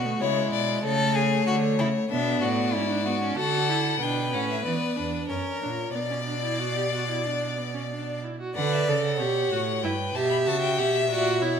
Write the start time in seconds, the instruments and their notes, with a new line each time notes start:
Already playing: cello B2, violin F#4
0.05 viola A3
0.20 cello C#3, viola G#3, violin E4 C#5
0.53 cello B2, violin D5
0.84 cello C#3, viola A3, violin A4 C#5
1.15 violin G#4
1.47 cello D3, violin F#4
1.79 cello C#3, violin E4
2.11 cello B2, viola B3, violin D4 E5
2.42 cello A2, violin F#4 D5
2.73 cello G#2, viola C#4, violin E4
2.90 viola D4
3.06 viola B3, violin F#4
3.22 viola C#4
3.37 cello D3, viola F#4, violin A4 F#5
3.69 viola E4
4.00 cello B2, viola D4, violin B4 G5
4.33 cello A2, viola C#4, violin F#5
4.50 violin E5
4.65 cello E3, viola B3, violin D5
4.97 cello E2, viola D4
5.29 cello F#2, viola C#4, violin A#4 C#5
5.62 cello A#2, viola D4
5.94 cello B2, viola B3, violin D5
6.10 viola C#4
6.27 viola D4
6.43 viola E4
6.59 viola F#4
6.76 viola G4
6.92 viola F#4
7.09 viola E4
7.26 viola D4
7.58 viola B3
7.74 viola C#4
7.91 viola D4
8.24 viola E4
8.41 viola F#4
8.55 cello D3, viola B4, violin D5 F#5
8.73 violin E5
8.88 cello C#3, viola A4, violin D5
9.04 violin F#5
9.20 cello B2, viola G4, violin C#5
9.52 cello A2, viola F#4
9.83 cello G2, viola E4, violin B4 G5
10.15 cello B2, viola G4, violin E5 A5
10.30 violin B5
10.46 cello C#3, viola F#4, violin A5
10.61 violin G5
10.78 cello B2, viola G4, violin F#5
10.94 violin E5
11.09 cello A#2, viola F#4, violin D5
11.41 cello B2, viola E4, violin C#5